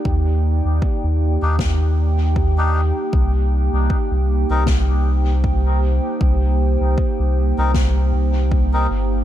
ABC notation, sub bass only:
X:1
M:4/4
L:1/16
Q:"Swing 16ths" 1/4=78
K:Cm
V:1 name="Sub bass" clef=bass
E,,3 E,, z E,,2 E,,8 z | C,,3 C,, z C,,2 C,,8 z | C,,3 C,, z C,,2 C,,3 C,,4 G,,,2 |]